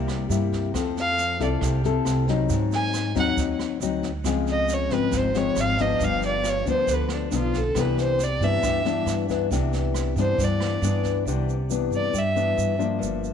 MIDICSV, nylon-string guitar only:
0, 0, Header, 1, 2, 480
1, 0, Start_track
1, 0, Key_signature, 0, "major"
1, 0, Tempo, 438276
1, 813, Time_signature, 4, 2, 24, 8
1, 14603, End_track
2, 0, Start_track
2, 0, Title_t, "Nylon-string guitar"
2, 0, Program_c, 0, 24
2, 0, Note_on_c, 0, 48, 54
2, 0, Note_on_c, 0, 55, 63
2, 0, Note_on_c, 0, 58, 62
2, 0, Note_on_c, 0, 64, 59
2, 296, Note_off_c, 0, 55, 0
2, 300, Note_off_c, 0, 58, 0
2, 300, Note_off_c, 0, 64, 0
2, 334, Note_on_c, 0, 55, 49
2, 339, Note_on_c, 0, 58, 48
2, 340, Note_on_c, 0, 64, 58
2, 775, Note_off_c, 0, 55, 0
2, 777, Note_off_c, 0, 58, 0
2, 778, Note_off_c, 0, 64, 0
2, 792, Note_off_c, 0, 48, 0
2, 816, Note_on_c, 0, 53, 51
2, 823, Note_on_c, 0, 60, 51
2, 824, Note_on_c, 0, 69, 64
2, 1498, Note_off_c, 0, 60, 0
2, 1500, Note_off_c, 0, 69, 0
2, 1536, Note_on_c, 0, 60, 56
2, 1536, Note_on_c, 0, 64, 56
2, 1543, Note_on_c, 0, 69, 64
2, 1752, Note_off_c, 0, 53, 0
2, 1787, Note_on_c, 0, 48, 50
2, 1976, Note_off_c, 0, 64, 0
2, 1977, Note_off_c, 0, 60, 0
2, 1980, Note_off_c, 0, 69, 0
2, 2025, Note_on_c, 0, 60, 65
2, 2030, Note_on_c, 0, 64, 62
2, 2036, Note_on_c, 0, 69, 71
2, 2461, Note_off_c, 0, 60, 0
2, 2464, Note_off_c, 0, 64, 0
2, 2466, Note_off_c, 0, 69, 0
2, 2504, Note_on_c, 0, 54, 56
2, 2509, Note_on_c, 0, 60, 56
2, 2512, Note_on_c, 0, 63, 68
2, 2717, Note_off_c, 0, 48, 0
2, 2733, Note_on_c, 0, 44, 55
2, 3421, Note_off_c, 0, 54, 0
2, 3424, Note_off_c, 0, 60, 0
2, 3425, Note_off_c, 0, 63, 0
2, 3455, Note_on_c, 0, 54, 66
2, 3458, Note_on_c, 0, 60, 63
2, 3462, Note_on_c, 0, 63, 65
2, 3670, Note_off_c, 0, 44, 0
2, 4137, Note_off_c, 0, 54, 0
2, 4137, Note_off_c, 0, 60, 0
2, 4140, Note_off_c, 0, 63, 0
2, 4181, Note_on_c, 0, 54, 51
2, 4186, Note_on_c, 0, 60, 52
2, 4191, Note_on_c, 0, 63, 54
2, 4487, Note_off_c, 0, 54, 0
2, 4490, Note_off_c, 0, 60, 0
2, 4491, Note_off_c, 0, 63, 0
2, 4656, Note_on_c, 0, 49, 54
2, 4662, Note_on_c, 0, 53, 55
2, 4664, Note_on_c, 0, 60, 58
2, 4665, Note_on_c, 0, 56, 58
2, 5338, Note_off_c, 0, 56, 0
2, 5339, Note_off_c, 0, 53, 0
2, 5342, Note_off_c, 0, 60, 0
2, 5385, Note_on_c, 0, 53, 62
2, 5390, Note_on_c, 0, 56, 49
2, 5393, Note_on_c, 0, 60, 63
2, 5594, Note_off_c, 0, 49, 0
2, 5622, Note_on_c, 0, 44, 51
2, 5822, Note_off_c, 0, 53, 0
2, 5824, Note_off_c, 0, 56, 0
2, 5826, Note_off_c, 0, 60, 0
2, 5863, Note_on_c, 0, 56, 64
2, 5867, Note_on_c, 0, 53, 67
2, 5874, Note_on_c, 0, 60, 62
2, 6301, Note_off_c, 0, 56, 0
2, 6303, Note_off_c, 0, 53, 0
2, 6305, Note_off_c, 0, 60, 0
2, 6350, Note_on_c, 0, 53, 66
2, 6355, Note_on_c, 0, 59, 59
2, 6357, Note_on_c, 0, 62, 73
2, 6555, Note_off_c, 0, 44, 0
2, 6590, Note_on_c, 0, 43, 55
2, 7265, Note_off_c, 0, 53, 0
2, 7267, Note_off_c, 0, 59, 0
2, 7268, Note_off_c, 0, 62, 0
2, 7309, Note_on_c, 0, 53, 55
2, 7315, Note_on_c, 0, 59, 61
2, 7320, Note_on_c, 0, 62, 62
2, 7519, Note_off_c, 0, 43, 0
2, 7544, Note_on_c, 0, 50, 53
2, 7984, Note_off_c, 0, 53, 0
2, 7988, Note_off_c, 0, 59, 0
2, 7989, Note_off_c, 0, 62, 0
2, 8025, Note_on_c, 0, 53, 52
2, 8029, Note_on_c, 0, 59, 52
2, 8030, Note_on_c, 0, 62, 56
2, 8330, Note_off_c, 0, 53, 0
2, 8331, Note_off_c, 0, 59, 0
2, 8332, Note_off_c, 0, 62, 0
2, 8476, Note_off_c, 0, 50, 0
2, 8495, Note_on_c, 0, 48, 55
2, 8497, Note_on_c, 0, 52, 54
2, 8506, Note_on_c, 0, 59, 56
2, 8512, Note_on_c, 0, 62, 62
2, 8973, Note_off_c, 0, 52, 0
2, 8975, Note_off_c, 0, 59, 0
2, 8981, Note_off_c, 0, 62, 0
2, 9222, Note_on_c, 0, 52, 66
2, 9228, Note_on_c, 0, 59, 56
2, 9232, Note_on_c, 0, 62, 64
2, 9432, Note_off_c, 0, 48, 0
2, 9457, Note_on_c, 0, 43, 58
2, 9660, Note_off_c, 0, 52, 0
2, 9663, Note_off_c, 0, 59, 0
2, 9664, Note_off_c, 0, 62, 0
2, 9693, Note_on_c, 0, 52, 59
2, 9699, Note_on_c, 0, 59, 68
2, 9704, Note_on_c, 0, 62, 74
2, 10136, Note_off_c, 0, 52, 0
2, 10138, Note_off_c, 0, 59, 0
2, 10141, Note_off_c, 0, 62, 0
2, 10182, Note_on_c, 0, 52, 60
2, 10183, Note_on_c, 0, 59, 60
2, 10196, Note_on_c, 0, 62, 75
2, 10380, Note_off_c, 0, 59, 0
2, 10381, Note_off_c, 0, 52, 0
2, 10387, Note_off_c, 0, 62, 0
2, 10392, Note_off_c, 0, 43, 0
2, 10426, Note_on_c, 0, 48, 58
2, 10431, Note_on_c, 0, 52, 59
2, 10435, Note_on_c, 0, 59, 51
2, 10439, Note_on_c, 0, 62, 62
2, 11104, Note_off_c, 0, 59, 0
2, 11105, Note_off_c, 0, 52, 0
2, 11108, Note_off_c, 0, 62, 0
2, 11152, Note_on_c, 0, 52, 64
2, 11156, Note_on_c, 0, 59, 60
2, 11161, Note_on_c, 0, 62, 69
2, 11356, Note_off_c, 0, 48, 0
2, 11384, Note_on_c, 0, 43, 53
2, 11826, Note_off_c, 0, 52, 0
2, 11826, Note_off_c, 0, 59, 0
2, 11827, Note_off_c, 0, 62, 0
2, 11866, Note_on_c, 0, 52, 62
2, 11872, Note_on_c, 0, 59, 61
2, 11876, Note_on_c, 0, 62, 60
2, 12301, Note_off_c, 0, 52, 0
2, 12305, Note_off_c, 0, 59, 0
2, 12305, Note_off_c, 0, 62, 0
2, 12314, Note_off_c, 0, 43, 0
2, 12348, Note_on_c, 0, 48, 49
2, 12352, Note_on_c, 0, 52, 51
2, 12353, Note_on_c, 0, 62, 53
2, 12355, Note_on_c, 0, 59, 56
2, 12650, Note_off_c, 0, 59, 0
2, 12651, Note_off_c, 0, 52, 0
2, 12652, Note_off_c, 0, 62, 0
2, 12813, Note_on_c, 0, 52, 55
2, 12827, Note_on_c, 0, 59, 53
2, 12833, Note_on_c, 0, 62, 55
2, 13278, Note_off_c, 0, 48, 0
2, 13290, Note_off_c, 0, 52, 0
2, 13292, Note_on_c, 0, 43, 49
2, 13297, Note_off_c, 0, 59, 0
2, 13300, Note_off_c, 0, 62, 0
2, 13532, Note_on_c, 0, 52, 55
2, 13540, Note_on_c, 0, 59, 53
2, 13545, Note_on_c, 0, 62, 72
2, 13974, Note_off_c, 0, 52, 0
2, 13978, Note_off_c, 0, 59, 0
2, 13980, Note_off_c, 0, 62, 0
2, 14003, Note_on_c, 0, 53, 58
2, 14010, Note_on_c, 0, 62, 74
2, 14014, Note_on_c, 0, 58, 64
2, 14212, Note_off_c, 0, 43, 0
2, 14225, Note_on_c, 0, 43, 54
2, 14603, Note_off_c, 0, 43, 0
2, 14603, Note_off_c, 0, 53, 0
2, 14603, Note_off_c, 0, 58, 0
2, 14603, Note_off_c, 0, 62, 0
2, 14603, End_track
0, 0, End_of_file